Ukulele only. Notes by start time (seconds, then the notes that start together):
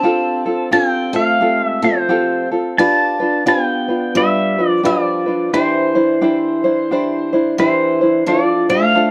0.03 C4 F4 G4 A4
0.46 C4 F4 A4
0.71 C4 F4 G4 A4
1.14 C4 F4 A4
1.41 C4 F4 G4 A4
1.82 C4 F4 A4
2.09 C4 F4 G4 A4
2.52 C4 F4 A4
2.78 D4 F4 G4 B4
3.20 D4 F4 B4
3.46 D4 F4 G4 B4
3.88 D4 F4 B4
4.15 D4 F4 G4 B4
4.58 D4 F4 B4
4.83 D4 F4 G4 B4
5.26 D4 F4 B4
5.53 D4 E4 G4 C5
5.95 D4 E4 C5
6.21 D4 E4 G4 C5
6.64 D4 E4 C5
6.91 D4 E4 G4 C5
7.33 D4 E4 C5
7.59 D4 E4 G4 C5
8.01 D4 E4 C5
8.27 D4 F4 A4 C5
8.69 D4 F4 C5
8.95 D4 F4 A4 C5